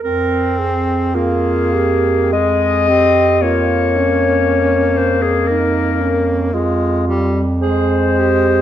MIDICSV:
0, 0, Header, 1, 5, 480
1, 0, Start_track
1, 0, Key_signature, -4, "minor"
1, 0, Tempo, 1109057
1, 18, Time_signature, 3, 2, 24, 8
1, 498, Tempo, 1176471
1, 978, Tempo, 1100917
1, 1458, Tempo, 1034483
1, 2898, Tempo, 1079137
1, 3378, Tempo, 1190476
1, 3783, End_track
2, 0, Start_track
2, 0, Title_t, "Clarinet"
2, 0, Program_c, 0, 71
2, 497, Note_on_c, 0, 68, 68
2, 961, Note_off_c, 0, 68, 0
2, 978, Note_on_c, 0, 75, 93
2, 1454, Note_on_c, 0, 73, 77
2, 1461, Note_off_c, 0, 75, 0
2, 2175, Note_on_c, 0, 72, 76
2, 2182, Note_off_c, 0, 73, 0
2, 2290, Note_on_c, 0, 68, 67
2, 2297, Note_off_c, 0, 72, 0
2, 2407, Note_on_c, 0, 70, 70
2, 2414, Note_off_c, 0, 68, 0
2, 2898, Note_off_c, 0, 70, 0
2, 3379, Note_on_c, 0, 72, 76
2, 3783, Note_off_c, 0, 72, 0
2, 3783, End_track
3, 0, Start_track
3, 0, Title_t, "Alto saxophone"
3, 0, Program_c, 1, 65
3, 12, Note_on_c, 1, 70, 68
3, 253, Note_on_c, 1, 68, 50
3, 260, Note_off_c, 1, 70, 0
3, 493, Note_off_c, 1, 68, 0
3, 496, Note_on_c, 1, 65, 61
3, 735, Note_on_c, 1, 67, 65
3, 742, Note_off_c, 1, 65, 0
3, 983, Note_on_c, 1, 68, 62
3, 989, Note_off_c, 1, 67, 0
3, 1225, Note_on_c, 1, 67, 61
3, 1232, Note_off_c, 1, 68, 0
3, 1460, Note_off_c, 1, 67, 0
3, 1463, Note_on_c, 1, 65, 58
3, 1708, Note_on_c, 1, 61, 57
3, 1715, Note_off_c, 1, 65, 0
3, 2330, Note_off_c, 1, 61, 0
3, 2409, Note_on_c, 1, 63, 56
3, 2654, Note_on_c, 1, 61, 55
3, 2661, Note_off_c, 1, 63, 0
3, 2894, Note_off_c, 1, 61, 0
3, 2897, Note_on_c, 1, 65, 59
3, 3243, Note_off_c, 1, 65, 0
3, 3378, Note_on_c, 1, 68, 71
3, 3611, Note_on_c, 1, 67, 69
3, 3617, Note_off_c, 1, 68, 0
3, 3783, Note_off_c, 1, 67, 0
3, 3783, End_track
4, 0, Start_track
4, 0, Title_t, "Tenor saxophone"
4, 0, Program_c, 2, 66
4, 18, Note_on_c, 2, 60, 55
4, 498, Note_on_c, 2, 58, 56
4, 504, Note_off_c, 2, 60, 0
4, 977, Note_on_c, 2, 56, 59
4, 984, Note_off_c, 2, 58, 0
4, 1219, Note_off_c, 2, 56, 0
4, 1221, Note_on_c, 2, 60, 56
4, 1455, Note_on_c, 2, 58, 54
4, 1462, Note_off_c, 2, 60, 0
4, 2902, Note_on_c, 2, 56, 57
4, 2908, Note_off_c, 2, 58, 0
4, 3139, Note_off_c, 2, 56, 0
4, 3140, Note_on_c, 2, 55, 60
4, 3292, Note_off_c, 2, 55, 0
4, 3381, Note_on_c, 2, 56, 59
4, 3783, Note_off_c, 2, 56, 0
4, 3783, End_track
5, 0, Start_track
5, 0, Title_t, "Bass clarinet"
5, 0, Program_c, 3, 71
5, 16, Note_on_c, 3, 41, 52
5, 2879, Note_off_c, 3, 41, 0
5, 2900, Note_on_c, 3, 41, 59
5, 3783, Note_off_c, 3, 41, 0
5, 3783, End_track
0, 0, End_of_file